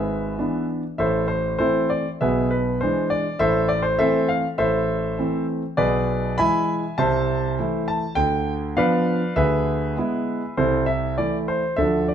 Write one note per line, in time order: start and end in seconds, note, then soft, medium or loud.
0.00 0.37 G#1 soft
0.00 0.37 G#2 soft
0.00 0.65 G#4 soft
0.00 0.65 B4 soft
0.00 0.64 E5 medium
0.38 0.82 E3 soft
0.38 0.82 B3 soft
0.38 0.82 D4 soft
0.98 1.57 A1 soft
0.98 1.57 A2 soft
0.98 1.27 A4 medium
0.98 1.26 C5 medium
0.98 1.26 E5 medium
1.28 1.57 C5 medium
1.59 2.03 E3 soft
1.59 2.03 A3 soft
1.59 2.04 C4 soft
1.59 1.88 E4 medium
1.59 1.88 A4 medium
1.59 1.89 C5 medium
1.90 2.08 D5 medium
2.21 2.79 B1 soft
2.21 2.79 B2 soft
2.21 2.49 G#4 medium
2.21 2.49 B4 medium
2.21 2.47 E5 medium
2.51 2.77 B4 medium
2.81 3.24 E3 soft
2.81 3.24 G#3 soft
2.81 3.24 D4 soft
2.81 3.07 C5 medium
3.10 3.39 D5 medium
3.39 3.97 A1 soft
3.39 3.97 A2 medium
3.39 3.67 A4 medium
3.39 3.67 C5 medium
3.39 3.69 E5 medium
3.69 3.83 D5 medium
3.82 3.98 C5 medium
3.99 4.42 E3 soft
3.99 4.42 A3 soft
3.99 4.42 C4 soft
3.99 4.26 A4 medium
3.99 4.26 C5 medium
3.99 4.28 E5 medium
4.28 4.46 F5 medium
4.58 5.16 A1 soft
4.58 5.16 A2 soft
4.58 5.44 A4 medium
4.58 5.44 C5 medium
4.58 5.43 E5 medium
5.19 5.61 E3 soft
5.19 5.61 A3 soft
5.19 5.61 C4 soft
5.77 6.37 B1 medium
5.77 6.37 B2 medium
5.77 6.35 G#4 medium
5.77 6.35 B4 medium
5.77 6.38 D5 medium
6.38 6.82 E3 soft
6.38 6.82 G#3 soft
6.38 6.82 E4 soft
6.38 6.95 E5 medium
6.38 6.95 G#5 medium
6.38 6.74 B5 medium
6.98 7.57 C2 soft
6.98 7.57 C3 medium
6.98 7.85 C5 medium
6.98 7.85 E5 medium
6.98 7.52 A5 medium
7.59 8.02 E3 soft
7.59 8.02 A3 soft
7.59 8.02 E4 soft
7.88 8.18 A5 medium
8.15 8.75 D2 soft
8.15 8.75 D3 medium
8.15 8.52 G5 medium
8.77 9.20 F3 soft
8.77 9.21 B3 soft
8.77 9.21 D4 soft
8.77 9.33 B4 medium
8.77 9.33 D5 medium
8.77 9.37 F5 medium
9.36 9.95 D2 medium
9.36 9.95 D3 medium
9.36 10.53 G#4 medium
9.36 10.53 B4 medium
9.36 10.57 E5 medium
9.97 10.40 G#3 soft
9.97 10.41 B3 soft
9.97 10.41 E4 soft
10.57 11.16 C2 soft
10.57 11.16 C3 medium
10.57 10.86 E4 medium
10.57 10.86 A4 medium
10.57 10.85 C5 medium
10.86 11.14 E5 medium
11.18 11.62 E3 soft
11.18 11.62 A3 soft
11.18 11.62 E4 soft
11.18 11.36 D5 medium
11.48 11.79 C5 medium
11.76 12.14 D2 soft
11.76 12.14 D3 soft
11.76 12.14 F3 soft
11.76 12.14 A3 soft
11.76 12.14 D4 soft
11.76 12.07 A4 medium
11.76 12.05 E5 medium
12.08 12.14 D5 medium